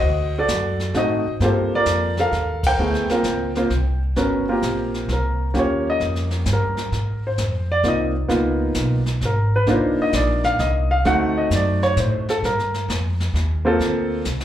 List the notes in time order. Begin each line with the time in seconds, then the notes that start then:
Already playing: F#4 C5 D#5
0.02 D2, brush sweep
0.38 F#4 A4 D5
0.48 F#2, kick, snare, hi-hat pedal
0.80 snare
0.94 A2 A3 C4 D#4 F#4 C5 D#5, kick, snare
1.26 muted upright bass stroke
1.40 G2 A#3 C4 F4 G4, brush sweep, kick, snare
1.44 A4 C5
1.75 F4 A#4 D5
1.85 F2, kick, snare, hi-hat pedal
2.17 A4 A#4 F5, snare
2.32 D#2, kick, snare
2.63 A#4 C5 G5, kick, crash
2.78 D2 A3 B3 E4 G#4, brush sweep
2.94 snare
3.09 A#3 C4 F4 A#4, muted upright bass stroke, snare
3.23 C#2, kick, snare, hi-hat pedal
3.55 A#3 C4 F4 C5, snare
3.70 C2, kick, snare
4.16 G1 B3 C#4 F#4 A#4, brush sweep, kick, snare
4.49 A#3 C4 F4 G4 A#4
4.62 A#1, kick, snare, hi-hat pedal
4.94 snare
5.08 C2, kick, snare
5.13 A#4
5.54 D#2 A#3 C#4 F4 G4, brush sweep, kick, snare
5.59 C#5
5.90 D#5
6.00 F2, kick, snare
6.15 snare
6.31 snare
6.45 G2, kick, snare, hi-hat pedal
6.53 A#4
6.77 snare
6.92 G#2, brush sweep, kick, snare
7.27 C5
7.38 F2, kick, snare, hi-hat pedal
7.72 D5
7.83 C2 A#3 C4 D#4 F4, kick, snare
7.88 D#5
8.28 C#2 A#3 B3 D#4 F4, brush sweep, kick, snare
8.74 B1, kick, snare, hi-hat pedal
9.06 snare
9.21 G#1, kick, snare
9.25 A#4
9.56 B4
9.66 C2 A#3 D4 D#4 F4, brush sweep, kick, snare
9.71 C5
9.99 D#5, muted upright bass stroke
10.13 A#1 D5, kick, snare, hi-hat pedal
10.44 F5, snare
10.59 C2 D#5, kick, snare
10.91 F5
11.05 D2 A3 C4 D#4 F#4 F#5, brush sweep, kick, snare
11.38 D#5
11.50 F#2, kick, snare, hi-hat pedal
11.54 D5
11.82 C#5, snare
11.96 A2 C5, kick, snare, hi-hat pedal
12.29 A4, snare
12.43 G2 A#4, brush sweep, kick, snare
12.59 snare
12.74 snare
12.88 F2, kick, snare, hi-hat pedal
13.20 snare
13.34 D#2, kick, snare
13.65 A#3 C4 F4 A4
13.79 D2, brush sweep, kick, snare
14.25 C2, snare, hi-hat pedal
14.40 snare